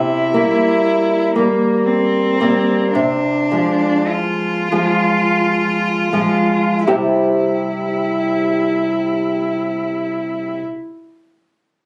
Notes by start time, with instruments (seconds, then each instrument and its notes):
Already playing: nylon-string guitar C3, cello E4
0.34 nylon-string guitar G3 A#3
1.34 nylon-string guitar G3 A#3, cello A#3
1.86 cello C4
2.40 nylon-string guitar G3 A#3
2.93 nylon-string guitar C3, cello D4
3.51 nylon-string guitar F3 G#3
4.09 cello F4
4.72 nylon-string guitar F3 G#3
6.13 nylon-string guitar F3 G#3
6.87 nylon-string guitar C3 G3 E4 G4 C5 E5, cello E4